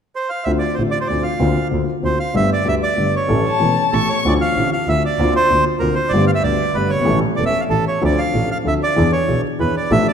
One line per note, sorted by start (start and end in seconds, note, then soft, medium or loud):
0.16 0.30 C5 medium
0.29 0.45 F5 medium
0.44 0.60 D2 soft
0.44 0.60 D2 medium
0.44 0.60 D3 medium
0.44 0.60 A3 soft
0.44 0.60 C4 soft
0.44 0.60 F4 soft
0.44 0.52 E5 medium
0.59 0.75 D5 medium
0.75 0.92 A1 soft
0.75 0.92 A2 soft
0.75 0.92 D3 soft
0.75 0.92 A3 soft
0.75 0.92 C4 soft
0.75 0.83 C5 soft
0.79 0.92 A1 soft
0.79 0.92 F4 soft
0.91 0.99 D5 medium
1.01 1.08 C5 medium
1.07 1.23 D2 soft
1.07 1.23 D3 soft
1.07 1.23 A3 soft
1.07 1.23 C4 soft
1.07 1.23 F4 soft
1.07 1.24 D5 medium
1.23 1.68 F5 medium
1.40 1.53 D2 medium
1.40 1.54 D2 medium
1.40 1.54 D3 medium
1.40 1.53 A#3 soft
1.40 1.54 C4 soft
1.40 1.54 F4 medium
1.71 1.85 D2 soft
1.71 1.85 D3 soft
1.71 1.85 A#3 soft
1.71 1.85 C4 soft
1.71 1.85 F4 soft
2.03 2.16 D2 soft
2.03 2.17 D2 soft
2.03 2.16 D3 soft
2.03 2.16 A#3 soft
2.03 2.16 C4 soft
2.03 2.17 F4 soft
2.03 2.19 C5 medium
2.20 2.35 F5 medium
2.34 2.48 G1 medium
2.34 2.48 G2 medium
2.34 2.47 D3 soft
2.34 2.48 A3 soft
2.34 2.48 B3 soft
2.34 2.48 G4 medium
2.34 2.50 E5 medium
2.53 2.68 D5 medium
2.65 2.79 D2 soft
2.65 2.80 D2 soft
2.65 2.79 D3 soft
2.65 2.79 A3 soft
2.65 2.79 B3 soft
2.65 2.79 G4 soft
2.65 2.75 E5 medium
2.83 3.15 D5 medium
2.97 3.11 G1 soft
2.97 3.12 G1 soft
2.97 3.11 G2 soft
2.97 3.11 D3 soft
2.97 3.11 A3 soft
2.97 3.11 B3 soft
2.97 3.11 G4 soft
3.16 3.90 C#5 medium
3.28 3.42 A1 medium
3.28 3.43 A1 medium
3.28 3.42 A2 medium
3.28 3.42 E3 medium
3.28 3.42 A3 soft
3.28 3.42 C#4 medium
3.28 3.42 A4 medium
3.47 3.95 A5 medium
3.60 3.74 E1 soft
3.60 3.75 E1 soft
3.60 3.74 E2 soft
3.60 3.74 E3 soft
3.60 3.74 A3 soft
3.60 3.74 C#4 soft
3.60 3.74 A4 soft
3.92 4.06 A1 soft
3.92 4.07 A1 soft
3.92 4.07 A2 soft
3.92 4.06 E3 soft
3.92 4.06 A3 soft
3.92 4.07 C#4 soft
3.92 4.09 A4 medium
3.92 4.07 A4 soft
3.92 4.25 C#6 medium
4.09 4.24 C#5 medium
4.25 4.38 D2 medium
4.25 4.39 D2 medium
4.25 4.38 D3 medium
4.25 4.38 A3 soft
4.25 4.38 C4 soft
4.25 4.38 F4 medium
4.25 4.34 D5 medium
4.41 4.70 F5 medium
4.57 4.70 A1 soft
4.57 4.70 A2 soft
4.57 4.70 D3 soft
4.57 4.70 A3 soft
4.57 4.70 C4 soft
4.57 4.70 F4 soft
4.73 4.89 F5 medium
4.88 5.01 D2 soft
4.88 5.01 D3 soft
4.88 5.01 A3 soft
4.88 5.01 C4 soft
4.88 5.01 F4 soft
4.88 5.03 E5 medium
5.06 5.34 D5 medium
5.19 5.32 D2 medium
5.19 5.33 D2 medium
5.19 5.33 D3 medium
5.19 5.33 A#3 medium
5.19 5.33 C4 soft
5.19 5.33 F4 medium
5.36 5.65 C5 medium
5.50 5.63 D2 soft
5.50 5.64 D2 soft
5.50 5.64 D3 soft
5.50 5.64 A#3 soft
5.50 5.64 C4 soft
5.50 5.64 F4 soft
5.80 5.94 D2 soft
5.80 5.95 D2 soft
5.80 5.95 D3 soft
5.80 5.95 A#3 soft
5.80 5.95 C4 soft
5.80 5.95 F4 soft
5.80 5.95 A#4 medium
5.95 6.12 C5 medium
6.09 6.25 G1 medium
6.09 6.25 D5 medium
6.13 6.26 G1 medium
6.13 6.26 G2 medium
6.13 6.26 D3 medium
6.13 6.26 A3 soft
6.13 6.26 B3 medium
6.13 6.26 G4 medium
6.27 6.31 F5 medium
6.35 6.43 E5 medium
6.43 6.57 D2 soft
6.43 6.57 D3 soft
6.43 6.57 A3 soft
6.43 6.57 B3 soft
6.43 6.58 G4 soft
6.43 6.76 D5 medium
6.74 6.88 G1 soft
6.74 6.89 G1 soft
6.74 6.89 G2 soft
6.74 6.88 D3 soft
6.74 6.88 A3 soft
6.74 6.88 B3 soft
6.74 6.89 G4 soft
6.74 6.91 B4 medium
6.90 7.06 G1 soft
6.90 7.20 C#5 medium
6.94 6.98 F#1 soft
6.99 7.03 G1 soft
6.99 7.06 G#1 medium
7.05 7.19 A1 medium
7.05 7.20 A1 medium
7.05 7.19 A2 medium
7.05 7.19 E3 medium
7.05 7.19 A3 soft
7.05 7.19 C#4 medium
7.05 7.19 A4 medium
7.36 7.51 E1 soft
7.36 7.52 E1 soft
7.36 7.51 E2 soft
7.36 7.51 E3 soft
7.36 7.51 A3 soft
7.36 7.51 C#4 soft
7.36 7.51 A4 soft
7.36 7.45 D5 medium
7.46 7.61 E5 medium
7.61 7.65 F5 medium
7.69 7.83 A1 soft
7.69 7.84 A1 soft
7.69 7.83 A2 soft
7.69 7.83 E3 soft
7.69 7.83 A3 soft
7.69 7.83 C#4 soft
7.69 7.83 A4 soft
7.69 7.85 A4 medium
7.88 8.03 C#5 medium
8.01 8.15 D2 medium
8.01 8.16 D2 medium
8.01 8.15 D3 medium
8.01 8.15 F3 medium
8.01 8.15 C4 soft
8.01 8.15 D4 medium
8.01 8.15 A4 medium
8.01 8.20 D5 medium
8.18 8.50 F5 medium
8.34 8.47 A1 soft
8.34 8.47 A2 soft
8.34 8.47 F3 soft
8.34 8.47 C4 soft
8.34 8.47 D4 soft
8.34 8.47 A4 soft
8.51 8.58 F5 medium
8.64 8.78 D2 soft
8.64 8.79 D2 soft
8.64 8.78 D3 soft
8.64 8.78 F3 soft
8.64 8.78 C4 soft
8.64 8.78 D4 soft
8.64 8.79 A4 soft
8.64 8.74 E5 medium
8.83 9.11 D5 medium
8.96 9.10 E2 medium
8.96 9.11 E2 medium
8.96 9.10 E3 medium
8.96 9.10 B3 medium
8.96 9.10 D4 medium
8.96 9.10 G#4 medium
9.12 9.41 C#5 medium
9.28 9.41 B1 soft
9.28 9.42 B1 soft
9.28 9.41 B2 soft
9.28 9.41 E3 soft
9.28 9.41 B3 soft
9.28 9.41 D4 soft
9.28 9.41 G#4 soft
9.59 9.72 E2 soft
9.59 9.73 E2 soft
9.59 9.73 E3 soft
9.59 9.72 B3 soft
9.59 9.72 D4 soft
9.59 9.72 G#4 soft
9.59 9.76 B4 medium
9.77 9.92 D5 medium
9.91 10.04 A1 medium
9.91 10.04 A2 medium
9.91 10.04 F3 medium
9.91 10.04 A3 medium
9.91 10.04 D4 medium
9.91 10.04 A4 medium
9.91 10.07 E5 medium
10.08 10.13 D5 medium